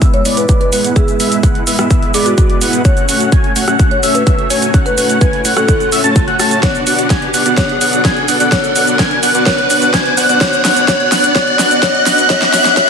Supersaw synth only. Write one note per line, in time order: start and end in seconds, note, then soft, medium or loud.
0.02 0.22 G#3 medium
0.02 0.22 B3 medium
0.02 0.23 E4 medium
0.02 0.22 B4 medium
0.02 0.22 E5 loud
0.25 0.45 G#3 medium
0.25 0.45 B3 medium
0.25 0.45 E4 medium
0.25 0.45 B4 medium
0.25 0.45 D5 loud
0.49 0.70 G#3 medium
0.49 0.70 B3 medium
0.49 0.70 E4 medium
0.49 0.70 B4 medium
0.49 0.70 D5 loud
0.73 0.93 G#3 medium
0.73 0.93 B3 medium
0.73 0.93 E4 medium
0.73 0.93 B4 medium
0.73 0.93 F#5 medium
0.96 1.17 G#3 medium
0.96 1.17 B3 medium
0.96 1.17 E4 medium
0.96 1.17 B4 medium
0.96 1.17 E5 loud
1.20 1.41 G#3 medium
1.20 1.41 B3 medium
1.20 1.41 E4 medium
1.20 1.41 B4 medium
1.20 1.41 E5 medium
1.43 1.64 G#3 medium
1.43 1.64 B3 medium
1.43 1.64 E4 medium
1.43 1.64 B4 medium
1.43 1.64 F#5 medium
1.67 1.76 G#3 medium
1.67 1.76 B3 medium
1.67 1.76 E4 medium
1.67 1.76 B4 medium
1.67 1.76 E5 medium
1.79 1.88 G#3 medium
1.79 1.88 B3 medium
1.79 1.88 E4 medium
1.79 1.88 B4 medium
1.79 1.88 E5 medium
1.91 2.11 G#3 medium
1.91 2.11 B3 medium
1.91 2.11 E4 medium
1.91 2.11 B4 medium
1.91 2.11 E5 loud
2.14 2.34 G#3 medium
2.14 2.34 B3 medium
2.14 2.34 E4 medium
2.14 2.34 B4 medium
2.14 2.34 D5 loud
2.38 2.59 G#3 medium
2.38 2.59 B3 medium
2.38 2.59 E4 medium
2.38 2.59 B4 medium
2.38 2.59 D5 loud
2.61 2.82 G#3 medium
2.61 2.82 B3 medium
2.61 2.82 E4 medium
2.61 2.82 B4 medium
2.61 2.82 F#5 medium
2.85 3.06 A3 medium
2.85 3.06 C#4 medium
2.85 3.06 F#4 medium
2.85 3.06 C#5 medium
2.85 3.06 F#5 loud
3.09 3.29 A3 medium
3.09 3.29 C#4 medium
3.09 3.30 F#4 medium
3.09 3.29 C#5 medium
3.09 3.29 F#5 medium
3.32 3.52 A3 medium
3.32 3.52 C#4 medium
3.32 3.52 F#4 medium
3.32 3.52 C#5 medium
3.32 3.52 G#5 loud
3.56 3.65 A3 medium
3.56 3.65 C#4 medium
3.56 3.65 F#4 medium
3.56 3.65 C#5 medium
3.56 3.65 F#5 medium
3.68 3.77 A3 medium
3.68 3.77 C#4 medium
3.68 3.77 F#4 medium
3.68 3.77 C#5 medium
3.68 3.77 F#5 medium
3.79 4.00 A3 medium
3.79 4.00 C#4 medium
3.79 4.00 F#4 medium
3.79 4.00 C#5 medium
3.79 4.00 F#5 loud
4.03 4.23 A3 medium
4.03 4.23 C#4 medium
4.03 4.23 F#4 medium
4.03 4.23 C#5 medium
4.03 4.23 E5 medium
4.27 4.48 A3 medium
4.27 4.48 C#4 medium
4.27 4.48 F#4 medium
4.27 4.48 C#5 medium
4.27 4.48 E5 loud
4.50 4.71 A3 medium
4.50 4.71 C#4 medium
4.50 4.71 F#4 medium
4.50 4.71 C#5 medium
4.50 4.71 G#5 medium
4.74 4.95 A3 medium
4.74 4.95 C#4 medium
4.74 4.95 F#4 medium
4.74 4.95 C#5 medium
4.74 4.95 F#5 loud
4.98 5.18 A3 medium
4.98 5.18 C#4 medium
4.98 5.18 F#4 medium
4.98 5.18 C#5 medium
4.98 5.18 F#5 medium
5.21 5.41 A3 medium
5.21 5.41 C#4 medium
5.21 5.41 F#4 medium
5.21 5.41 C#5 medium
5.21 5.41 G#5 loud
5.45 5.54 A3 medium
5.45 5.54 C#4 medium
5.45 5.54 F#4 medium
5.45 5.54 C#5 medium
5.45 5.54 F#5 medium
5.57 5.66 A3 medium
5.57 5.66 C#4 medium
5.57 5.66 F#4 medium
5.57 5.66 C#5 medium
5.57 5.66 F#5 medium
5.69 5.89 A3 medium
5.69 5.89 C#4 medium
5.69 5.89 F#4 medium
5.69 5.89 C#5 medium
5.69 5.89 F#5 loud
5.92 6.01 A3 medium
5.92 6.01 C#4 medium
5.92 6.01 F#4 medium
5.92 6.01 C#5 medium
5.92 6.01 E5 medium
6.04 6.25 A3 medium
6.04 6.25 C#4 medium
6.04 6.25 F#4 medium
6.04 6.25 C#5 medium
6.04 6.25 A5 loud
6.27 6.37 A3 medium
6.27 6.37 C#4 medium
6.27 6.37 F#4 medium
6.27 6.37 C#5 medium
6.27 6.37 F#5 loud
6.39 6.60 A3 medium
6.39 6.60 C#4 medium
6.39 6.60 F#4 medium
6.39 6.60 C#5 medium
6.39 6.60 A5 loud
6.63 6.84 B3 medium
6.63 6.84 D4 medium
6.63 6.84 F#4 medium
6.63 6.84 D5 medium
6.63 6.84 F#5 medium
6.87 7.07 B3 medium
6.87 7.07 D4 medium
6.87 7.07 F#4 medium
6.87 7.07 D5 medium
6.87 7.07 F#5 medium
7.10 7.30 B3 medium
7.10 7.30 D4 medium
7.10 7.30 F#4 medium
7.10 7.30 D5 medium
7.10 7.30 G#5 medium
7.34 7.43 B3 medium
7.34 7.43 D4 medium
7.34 7.43 F#4 medium
7.34 7.43 D5 medium
7.34 7.43 F#5 medium
7.45 7.55 B3 medium
7.45 7.55 D4 medium
7.45 7.55 F#4 medium
7.45 7.55 D5 medium
7.45 7.55 F#5 medium
7.57 7.78 B3 medium
7.57 7.78 D4 medium
7.57 7.78 F#4 medium
7.57 7.78 D5 medium
7.57 7.78 F#5 medium
7.81 8.02 B3 medium
7.81 8.02 D4 medium
7.81 8.02 F#4 medium
7.81 8.02 D5 medium
7.81 8.02 F#5 medium
8.05 8.25 B3 medium
8.05 8.25 D4 medium
8.05 8.25 F#4 medium
8.05 8.25 D5 medium
8.05 8.25 G#5 medium
8.28 8.37 B3 medium
8.28 8.37 D4 medium
8.28 8.37 F#4 medium
8.28 8.37 D5 medium
8.28 8.37 F#5 medium
8.40 8.49 B3 medium
8.40 8.49 D4 medium
8.40 8.49 F#4 medium
8.40 8.49 D5 medium
8.40 8.49 F#5 medium
8.52 8.73 B3 medium
8.52 8.73 D4 medium
8.52 8.73 F#4 medium
8.52 8.73 D5 medium
8.52 8.73 F#5 medium
8.76 8.96 B3 medium
8.76 8.96 D4 medium
8.76 8.96 F#4 medium
8.76 8.96 D5 medium
8.76 8.96 F#5 medium
8.99 9.19 B3 medium
8.99 9.19 D4 medium
8.99 9.19 F#4 medium
8.99 9.19 D5 medium
8.99 9.19 G#5 medium
9.23 9.32 B3 medium
9.23 9.32 D4 medium
9.23 9.32 F#4 medium
9.23 9.32 D5 medium
9.23 9.32 F#5 medium
9.35 9.44 B3 medium
9.35 9.44 D4 medium
9.35 9.44 F#4 medium
9.35 9.44 D5 medium
9.35 9.44 F#5 medium
9.46 9.67 B3 medium
9.46 9.67 D4 medium
9.46 9.67 F#4 medium
9.46 9.67 D5 medium
9.46 9.67 F#5 loud
9.70 9.91 B3 medium
9.70 9.91 D4 medium
9.70 9.91 F#4 medium
9.70 9.91 D5 medium
9.70 9.91 F#5 medium
9.94 10.14 B3 medium
9.94 10.14 D4 medium
9.94 10.14 F#4 medium
9.94 10.14 D5 medium
9.94 10.14 G#5 medium
10.17 10.26 B3 medium
10.17 10.26 D4 medium
10.17 10.26 F#4 medium
10.17 10.26 D5 medium
10.17 10.26 F#5 loud
10.29 10.38 B3 medium
10.29 10.38 D4 medium
10.29 10.38 F#4 medium
10.29 10.38 D5 medium
10.29 10.38 F#5 medium
10.41 10.62 B3 medium
10.41 10.62 D4 medium
10.41 10.62 F#4 medium
10.41 10.62 D5 medium
10.41 10.62 F#5 medium
10.65 10.85 B3 medium
10.65 10.85 D4 medium
10.65 10.85 F#4 medium
10.65 10.85 D5 medium
10.65 10.85 F#5 medium
10.88 11.09 B3 medium
10.88 11.09 D4 medium
10.88 11.09 F#4 medium
10.88 11.09 D5 medium
10.88 11.09 F#5 loud
11.12 11.33 B3 medium
11.12 11.33 D4 medium
11.12 11.33 F#4 medium
11.12 11.33 D5 medium
11.12 11.33 F#5 medium
11.35 11.56 B3 medium
11.35 11.56 D4 medium
11.35 11.56 F#4 medium
11.35 11.56 D5 medium
11.35 11.56 F#5 loud
11.59 11.80 B3 medium
11.59 11.80 D4 medium
11.59 11.80 F#4 medium
11.59 11.80 D5 medium
11.59 11.80 F#5 loud
11.83 12.04 B3 medium
11.83 12.04 D4 medium
11.83 12.04 F#4 medium
11.83 12.04 D5 medium
11.83 12.04 F#5 loud
12.06 12.27 B3 medium
12.06 12.27 D4 medium
12.06 12.27 F#4 medium
12.06 12.27 D5 medium
12.06 12.27 F#5 loud
12.30 12.51 B3 medium
12.30 12.51 D4 medium
12.30 12.51 F#4 medium
12.30 12.51 D5 medium
12.30 12.51 F#5 loud
12.54 12.74 B3 medium
12.54 12.74 D4 medium
12.54 12.74 F#4 medium
12.54 12.74 D5 medium
12.54 12.74 F#5 loud
12.77 12.90 B3 loud
12.77 12.90 D4 medium
12.77 12.90 F#4 medium
12.77 12.90 D5 medium
12.77 12.90 F#5 loud